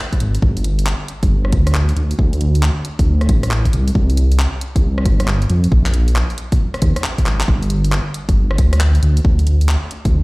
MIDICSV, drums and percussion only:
0, 0, Header, 1, 2, 480
1, 0, Start_track
1, 0, Key_signature, -2, "minor"
1, 0, Tempo, 441176
1, 460, Time_signature, 4, 2, 24, 8
1, 11134, End_track
2, 0, Start_track
2, 0, Title_t, "Drums"
2, 137, Note_on_c, 9, 36, 64
2, 137, Note_on_c, 9, 42, 48
2, 221, Note_off_c, 9, 42, 0
2, 221, Note_on_c, 9, 42, 86
2, 245, Note_off_c, 9, 36, 0
2, 330, Note_off_c, 9, 42, 0
2, 377, Note_on_c, 9, 42, 60
2, 461, Note_on_c, 9, 36, 116
2, 485, Note_off_c, 9, 42, 0
2, 570, Note_off_c, 9, 36, 0
2, 617, Note_on_c, 9, 42, 52
2, 701, Note_off_c, 9, 42, 0
2, 701, Note_on_c, 9, 42, 96
2, 810, Note_off_c, 9, 42, 0
2, 857, Note_on_c, 9, 42, 66
2, 940, Note_on_c, 9, 39, 116
2, 966, Note_off_c, 9, 42, 0
2, 1049, Note_off_c, 9, 39, 0
2, 1180, Note_on_c, 9, 42, 87
2, 1288, Note_off_c, 9, 42, 0
2, 1335, Note_on_c, 9, 42, 63
2, 1336, Note_on_c, 9, 36, 104
2, 1444, Note_off_c, 9, 42, 0
2, 1445, Note_off_c, 9, 36, 0
2, 1575, Note_on_c, 9, 37, 62
2, 1659, Note_on_c, 9, 42, 94
2, 1660, Note_on_c, 9, 36, 105
2, 1684, Note_off_c, 9, 37, 0
2, 1768, Note_off_c, 9, 42, 0
2, 1769, Note_off_c, 9, 36, 0
2, 1814, Note_on_c, 9, 37, 64
2, 1814, Note_on_c, 9, 42, 66
2, 1898, Note_on_c, 9, 39, 116
2, 1923, Note_off_c, 9, 37, 0
2, 1923, Note_off_c, 9, 42, 0
2, 2007, Note_off_c, 9, 39, 0
2, 2054, Note_on_c, 9, 42, 50
2, 2138, Note_off_c, 9, 42, 0
2, 2138, Note_on_c, 9, 42, 86
2, 2247, Note_off_c, 9, 42, 0
2, 2294, Note_on_c, 9, 42, 63
2, 2379, Note_on_c, 9, 36, 111
2, 2403, Note_off_c, 9, 42, 0
2, 2488, Note_off_c, 9, 36, 0
2, 2535, Note_on_c, 9, 42, 54
2, 2619, Note_off_c, 9, 42, 0
2, 2619, Note_on_c, 9, 42, 101
2, 2728, Note_off_c, 9, 42, 0
2, 2776, Note_on_c, 9, 42, 66
2, 2859, Note_on_c, 9, 39, 115
2, 2884, Note_off_c, 9, 42, 0
2, 2968, Note_off_c, 9, 39, 0
2, 3098, Note_on_c, 9, 42, 92
2, 3207, Note_off_c, 9, 42, 0
2, 3255, Note_on_c, 9, 36, 105
2, 3255, Note_on_c, 9, 42, 64
2, 3363, Note_off_c, 9, 42, 0
2, 3364, Note_off_c, 9, 36, 0
2, 3494, Note_on_c, 9, 37, 61
2, 3494, Note_on_c, 9, 42, 36
2, 3578, Note_off_c, 9, 42, 0
2, 3578, Note_on_c, 9, 42, 102
2, 3579, Note_on_c, 9, 36, 101
2, 3603, Note_off_c, 9, 37, 0
2, 3687, Note_off_c, 9, 42, 0
2, 3688, Note_off_c, 9, 36, 0
2, 3735, Note_on_c, 9, 37, 62
2, 3735, Note_on_c, 9, 42, 68
2, 3818, Note_on_c, 9, 39, 112
2, 3844, Note_off_c, 9, 37, 0
2, 3844, Note_off_c, 9, 42, 0
2, 3926, Note_off_c, 9, 39, 0
2, 3975, Note_on_c, 9, 36, 58
2, 3976, Note_on_c, 9, 42, 52
2, 4060, Note_off_c, 9, 42, 0
2, 4060, Note_on_c, 9, 42, 91
2, 4084, Note_off_c, 9, 36, 0
2, 4168, Note_off_c, 9, 42, 0
2, 4217, Note_on_c, 9, 42, 68
2, 4299, Note_on_c, 9, 36, 107
2, 4326, Note_off_c, 9, 42, 0
2, 4408, Note_off_c, 9, 36, 0
2, 4457, Note_on_c, 9, 42, 56
2, 4541, Note_off_c, 9, 42, 0
2, 4541, Note_on_c, 9, 42, 107
2, 4650, Note_off_c, 9, 42, 0
2, 4696, Note_on_c, 9, 42, 66
2, 4780, Note_on_c, 9, 39, 114
2, 4805, Note_off_c, 9, 42, 0
2, 4889, Note_off_c, 9, 39, 0
2, 5020, Note_on_c, 9, 42, 96
2, 5129, Note_off_c, 9, 42, 0
2, 5175, Note_on_c, 9, 36, 103
2, 5177, Note_on_c, 9, 42, 66
2, 5284, Note_off_c, 9, 36, 0
2, 5286, Note_off_c, 9, 42, 0
2, 5417, Note_on_c, 9, 37, 64
2, 5500, Note_on_c, 9, 36, 102
2, 5500, Note_on_c, 9, 42, 105
2, 5525, Note_off_c, 9, 37, 0
2, 5609, Note_off_c, 9, 36, 0
2, 5609, Note_off_c, 9, 42, 0
2, 5657, Note_on_c, 9, 37, 65
2, 5657, Note_on_c, 9, 42, 68
2, 5740, Note_on_c, 9, 39, 106
2, 5766, Note_off_c, 9, 37, 0
2, 5766, Note_off_c, 9, 42, 0
2, 5849, Note_off_c, 9, 39, 0
2, 5895, Note_on_c, 9, 42, 53
2, 5980, Note_off_c, 9, 42, 0
2, 5980, Note_on_c, 9, 42, 93
2, 6088, Note_off_c, 9, 42, 0
2, 6135, Note_on_c, 9, 42, 67
2, 6220, Note_on_c, 9, 36, 110
2, 6243, Note_off_c, 9, 42, 0
2, 6329, Note_off_c, 9, 36, 0
2, 6374, Note_on_c, 9, 39, 58
2, 6374, Note_on_c, 9, 42, 55
2, 6459, Note_off_c, 9, 42, 0
2, 6459, Note_on_c, 9, 42, 112
2, 6483, Note_off_c, 9, 39, 0
2, 6567, Note_off_c, 9, 42, 0
2, 6614, Note_on_c, 9, 42, 65
2, 6699, Note_on_c, 9, 39, 114
2, 6722, Note_off_c, 9, 42, 0
2, 6808, Note_off_c, 9, 39, 0
2, 6855, Note_on_c, 9, 42, 38
2, 6940, Note_off_c, 9, 42, 0
2, 6940, Note_on_c, 9, 42, 95
2, 7048, Note_off_c, 9, 42, 0
2, 7095, Note_on_c, 9, 42, 66
2, 7096, Note_on_c, 9, 36, 105
2, 7204, Note_off_c, 9, 42, 0
2, 7205, Note_off_c, 9, 36, 0
2, 7335, Note_on_c, 9, 37, 64
2, 7335, Note_on_c, 9, 42, 37
2, 7418, Note_off_c, 9, 42, 0
2, 7418, Note_on_c, 9, 42, 110
2, 7420, Note_on_c, 9, 36, 100
2, 7444, Note_off_c, 9, 37, 0
2, 7527, Note_off_c, 9, 42, 0
2, 7529, Note_off_c, 9, 36, 0
2, 7576, Note_on_c, 9, 37, 68
2, 7576, Note_on_c, 9, 42, 67
2, 7659, Note_on_c, 9, 39, 111
2, 7684, Note_off_c, 9, 37, 0
2, 7684, Note_off_c, 9, 42, 0
2, 7768, Note_off_c, 9, 39, 0
2, 7816, Note_on_c, 9, 36, 59
2, 7816, Note_on_c, 9, 42, 54
2, 7900, Note_off_c, 9, 42, 0
2, 7900, Note_on_c, 9, 39, 84
2, 7900, Note_on_c, 9, 42, 96
2, 7925, Note_off_c, 9, 36, 0
2, 8009, Note_off_c, 9, 39, 0
2, 8009, Note_off_c, 9, 42, 0
2, 8056, Note_on_c, 9, 39, 95
2, 8056, Note_on_c, 9, 42, 67
2, 8140, Note_on_c, 9, 36, 114
2, 8165, Note_off_c, 9, 39, 0
2, 8165, Note_off_c, 9, 42, 0
2, 8249, Note_off_c, 9, 36, 0
2, 8296, Note_on_c, 9, 42, 52
2, 8378, Note_off_c, 9, 42, 0
2, 8378, Note_on_c, 9, 42, 107
2, 8487, Note_off_c, 9, 42, 0
2, 8535, Note_on_c, 9, 42, 65
2, 8619, Note_on_c, 9, 39, 121
2, 8644, Note_off_c, 9, 42, 0
2, 8728, Note_off_c, 9, 39, 0
2, 8860, Note_on_c, 9, 42, 93
2, 8969, Note_off_c, 9, 42, 0
2, 9016, Note_on_c, 9, 36, 105
2, 9017, Note_on_c, 9, 42, 61
2, 9125, Note_off_c, 9, 36, 0
2, 9126, Note_off_c, 9, 42, 0
2, 9255, Note_on_c, 9, 37, 70
2, 9339, Note_on_c, 9, 42, 105
2, 9341, Note_on_c, 9, 36, 109
2, 9364, Note_off_c, 9, 37, 0
2, 9448, Note_off_c, 9, 42, 0
2, 9449, Note_off_c, 9, 36, 0
2, 9496, Note_on_c, 9, 37, 70
2, 9496, Note_on_c, 9, 42, 67
2, 9580, Note_on_c, 9, 39, 115
2, 9605, Note_off_c, 9, 37, 0
2, 9605, Note_off_c, 9, 42, 0
2, 9689, Note_off_c, 9, 39, 0
2, 9737, Note_on_c, 9, 42, 52
2, 9821, Note_off_c, 9, 42, 0
2, 9821, Note_on_c, 9, 42, 95
2, 9930, Note_off_c, 9, 42, 0
2, 9976, Note_on_c, 9, 42, 64
2, 10061, Note_on_c, 9, 36, 119
2, 10085, Note_off_c, 9, 42, 0
2, 10169, Note_off_c, 9, 36, 0
2, 10216, Note_on_c, 9, 42, 49
2, 10300, Note_off_c, 9, 42, 0
2, 10300, Note_on_c, 9, 42, 104
2, 10409, Note_off_c, 9, 42, 0
2, 10458, Note_on_c, 9, 42, 62
2, 10540, Note_on_c, 9, 39, 122
2, 10566, Note_off_c, 9, 42, 0
2, 10649, Note_off_c, 9, 39, 0
2, 10781, Note_on_c, 9, 42, 93
2, 10889, Note_off_c, 9, 42, 0
2, 10936, Note_on_c, 9, 42, 59
2, 10937, Note_on_c, 9, 36, 109
2, 11045, Note_off_c, 9, 36, 0
2, 11045, Note_off_c, 9, 42, 0
2, 11134, End_track
0, 0, End_of_file